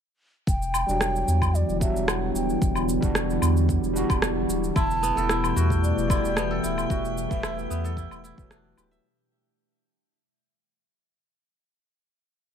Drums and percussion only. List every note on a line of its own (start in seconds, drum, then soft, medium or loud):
0.47 kick loud
0.47 cabasa soft
0.62 cabasa soft
0.74 cabasa medium
0.74 low woodblock medium
0.89 cabasa soft
1.01 cross-stick medium
1.01 cabasa soft
1.16 cabasa soft
1.28 cabasa medium
1.42 kick medium
1.42 cabasa soft
1.42 low woodblock medium
1.55 cabasa soft
1.69 cabasa soft
1.81 kick loud
1.81 cabasa medium
1.96 cabasa soft
2.08 cross-stick loud
2.08 cabasa soft
2.08 low woodblock medium
2.36 cabasa medium
2.50 cabasa soft
2.62 kick loud
2.62 cabasa soft
2.75 cabasa soft
2.75 low woodblock medium
2.89 cabasa medium
3.02 kick loud
3.02 cabasa soft
3.15 cross-stick loud
3.15 cabasa soft
3.30 cabasa soft
3.42 cabasa medium
3.42 low woodblock medium
3.57 cabasa soft
3.69 kick medium
3.69 cabasa soft
3.84 cabasa soft
3.96 cabasa medium
4.10 kick loud
4.10 cabasa soft
4.10 low woodblock medium
4.22 cross-stick loud
4.22 cabasa soft
4.50 cabasa medium
4.64 cabasa soft
4.76 kick loud
4.76 cabasa soft
4.76 low woodblock medium
4.91 cabasa soft
5.04 cabasa medium
5.18 cabasa soft
5.29 cross-stick medium
5.29 cabasa soft
5.44 cabasa soft
5.44 low woodblock medium
5.57 cabasa medium
5.70 kick medium
5.70 cabasa soft
5.84 cabasa soft
5.98 cabasa soft
6.10 kick loud
6.10 cabasa medium
6.10 low woodblock medium
6.25 cabasa soft
6.37 cross-stick loud
6.37 cabasa soft
6.64 cabasa medium
6.78 cabasa soft
6.78 low woodblock medium
6.90 kick loud
6.90 cabasa soft
7.05 cabasa soft
7.18 cabasa medium
7.31 kick loud
7.31 cabasa soft
7.43 cross-stick loud
7.43 cabasa soft
7.43 low woodblock medium
7.59 cabasa soft
7.71 cabasa medium
7.85 cabasa soft
7.97 kick medium
7.97 cabasa soft
8.11 cabasa soft
8.11 low woodblock medium
8.25 cabasa medium
8.38 kick loud
8.38 cabasa soft
8.51 cross-stick loud
8.51 cabasa soft
8.77 cabasa medium
8.77 low woodblock medium
8.93 cabasa soft